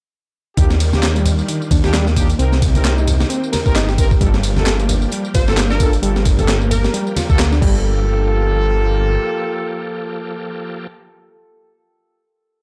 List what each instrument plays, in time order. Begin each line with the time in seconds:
0.57 detuned saw bass D#2, tonewheel organ D#3 G3 D4 F4, reed electric piano D#3, brass ensemble D4 D#4 F4 G4, kick, closed hi-hat, tambourine
0.70 snare, tambourine
0.80 closed hi-hat, ride, tambourine
0.93 brass ensemble D4 D#4 F4 G4, snare, tambourine, high conga
1.03 snare, clap, closed hi-hat, tambourine
1.16 reed electric piano G3, closed hi-hat, tambourine
1.26 closed hi-hat, ride, tambourine, low conga
1.39 tambourine
1.48 reed electric piano D#3, closed hi-hat, tambourine
1.62 tambourine
1.71 detuned saw bass D#2, reed electric piano D4, kick, closed hi-hat, ride, tambourine, high conga
1.84 brass ensemble D4 D#4 F4 G4, snare, tambourine
1.94 reed electric piano G3, snare, clap, closed hi-hat, tambourine
2.07 reed electric piano A#3, snare, tambourine
2.16 brass ensemble D4 D#4 F4 G4, kick, closed hi-hat, ride, tambourine
2.30 closed hi-hat, tambourine
2.39 detuned saw bass C2, tonewheel organ A#3 C4 G4, reed electric piano C4, brass ensemble C4 D#4 G4 A#4, closed hi-hat, tambourine
2.52 snare, tambourine
2.62 kick, closed hi-hat, ride, tambourine
2.74 brass ensemble C4 D#4 G4 A#4, closed hi-hat, tambourine, high conga
2.85 snare, clap, closed hi-hat, tambourine
2.97 reed electric piano D#4, tambourine
3.07 closed hi-hat, ride, tambourine, low conga
3.20 snare, tambourine
3.30 reed electric piano C4, closed hi-hat, tambourine
3.44 tambourine
3.52 reed electric piano A#4, snare, closed hi-hat, ride, tambourine, high conga
3.66 detuned saw bass G1, brass ensemble C4 D#4 G4 A#4, kick, tambourine
3.75 reed electric piano D#4, snare, clap, closed hi-hat, tambourine
3.89 reed electric piano G4, snare, tambourine
3.98 brass ensemble C4 D#4 G4 A#4, kick, closed hi-hat, ride, tambourine
4.11 kick, tambourine
4.21 detuned saw bass G1, tonewheel organ F3 G3 A#3 G4, reed electric piano G3, brass ensemble A#3 F4 G4 A4, kick, closed hi-hat, tambourine
4.34 snare, tambourine
4.43 closed hi-hat, ride, tambourine
4.56 brass ensemble A#3 F4 G4 A4, snare, tambourine, high conga
4.66 snare, clap, closed hi-hat, tambourine
4.79 reed electric piano A#3, closed hi-hat, tambourine
4.89 closed hi-hat, ride, tambourine, low conga
5.02 tambourine
5.12 reed electric piano G3, closed hi-hat, tambourine
5.25 tambourine
5.34 detuned saw bass G1, reed electric piano F4, synth pluck C5, kick, closed hi-hat, ride, tambourine, high conga
5.48 brass ensemble A#3 F4 G4 A4, snare, tambourine
5.57 reed electric piano A#3, snare, clap, closed hi-hat, tambourine
5.70 reed electric piano D4, synth pluck A#4, snare, tambourine
5.80 brass ensemble A#3 F4 G4 A4, kick, closed hi-hat, ride, tambourine
5.93 closed hi-hat, tambourine
6.02 detuned saw bass G1, reed electric piano G3, brass ensemble A#3 F4 G4 A4, closed hi-hat, tambourine
6.16 snare, tambourine
6.25 kick, closed hi-hat, ride, tambourine
6.39 brass ensemble A#3 F4 G4 A4, closed hi-hat, tambourine, high conga
6.48 snare, clap, closed hi-hat, tambourine
6.61 reed electric piano A#3, tambourine
6.71 synth pluck A#4, closed hi-hat, ride, tambourine, low conga
6.84 snare, tambourine
6.94 reed electric piano G3, closed hi-hat, tambourine
7.07 tambourine
7.16 reed electric piano F4, snare, closed hi-hat, ride, tambourine, high conga
7.29 detuned saw bass D2, brass ensemble A#3 F4 G4 A4, kick, tambourine
7.39 reed electric piano A#3, snare, clap, closed hi-hat, tambourine
7.52 reed electric piano D4, snare, tambourine
7.61 detuned saw bass G1, tonewheel organ F3 A#3 G4 A4, reed electric piano G3, brass ensemble A#3 F4 G4 A4, kick, crash